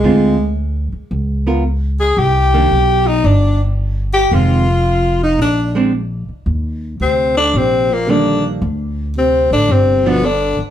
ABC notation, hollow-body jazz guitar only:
X:1
M:4/4
L:1/8
Q:"Swing" 1/4=112
K:Eb
V:1 name="Hollow-body jazz guitar"
[D,A,CF] z4 [=B,F_B] z2 | z [E,B,D] z6 | [E,A,C] z4 [A,CD] z2 | z6 [E,G,B,D]2 |
z4 z [F,=B,D] z2 |]